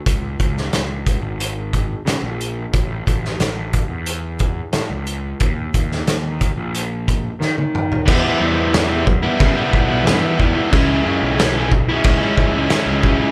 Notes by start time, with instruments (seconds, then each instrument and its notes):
0.06 picked electric bass C#2, kick, closed hi-hat
0.39 picked electric bass C#2, kick, closed hi-hat
0.57 snare
0.72 picked electric bass C#2, snare, closed hi-hat
1.07 kick, closed hi-hat
1.22 picked electric bass G#1
1.40 closed hi-hat
1.73 kick, closed hi-hat
2.05 picked electric bass C#3, snare, closed hi-hat
2.22 picked electric bass A#1
2.41 closed hi-hat
2.73 picked electric bass A1, kick, closed hi-hat
3.07 picked electric bass A1, kick, closed hi-hat
3.25 snare
3.38 picked electric bass A1, snare, closed hi-hat
3.73 kick, closed hi-hat
3.89 picked electric bass E2
4.06 closed hi-hat
4.39 kick, closed hi-hat
4.73 picked electric bass A2, snare, closed hi-hat
4.90 picked electric bass C#2
5.07 closed hi-hat
5.40 picked electric bass D#2, kick, closed hi-hat
5.74 picked electric bass D#2, kick, closed hi-hat
5.92 snare
6.07 picked electric bass D#2, snare, closed hi-hat
6.41 kick, closed hi-hat
6.56 picked electric bass A#1
6.75 closed hi-hat
7.08 kick, closed hi-hat
7.40 picked electric bass D#3, snare
7.58 picked electric bass D#3, high tom
7.75 mid tom
7.92 floor tom
8.05 picked electric bass E2, distorted electric guitar E3 G3 B3, kick, crash
8.10 distorted electric guitar E4
8.24 picked electric bass E3
8.39 picked electric bass E2, distorted electric guitar E3 G3 B3 E4
8.71 distorted electric guitar E3 G3 B3 E4, snare, crash
8.89 distorted electric guitar G3 B3 E4
9.06 muted distorted electric guitar stroke, kick
9.23 distorted electric guitar G3 B3 E4
9.40 picked electric bass C#3, kick, crash
9.56 distorted electric guitar G3 B3 E4
9.73 picked electric bass B1, kick
9.88 distorted electric guitar B3 E4
9.92 distorted electric guitar G3
10.04 picked electric bass G2, distorted electric guitar E3 G3 B3 E4, snare, crash
10.21 distorted electric guitar B3 E4
10.25 distorted electric guitar G3
10.38 picked electric bass E2, distorted electric guitar E3 G3 B3 E4, kick
10.54 distorted electric guitar G3 B3 E4
10.72 picked electric bass C#2, distorted electric guitar C#3 G#3 C#4 E4, kick, crash
11.03 picked electric bass F#2, distorted electric guitar C#3 G#3 C#4 E4
11.23 picked electric bass B1
11.36 distorted electric guitar C#3 G#3 C#4 E4, snare, crash
11.54 distorted electric guitar G#3 C#4 E4
11.72 muted distorted electric guitar stroke, kick
11.89 distorted electric guitar G#3 C#4 E4
12.04 picked electric bass C#2, kick, crash
12.21 distorted electric guitar G#3 C#4 E4
12.37 picked electric bass C#2, kick
12.55 distorted electric guitar G#3 C#4 E4
12.70 distorted electric guitar C#3 G#3 C#4 E4, snare, crash
12.86 picked electric bass C#2, distorted electric guitar G#3 C#4 E4
13.03 picked electric bass B1, distorted electric guitar C#3 G#3 C#4 E4, kick
13.19 distorted electric guitar G#3 C#4 E4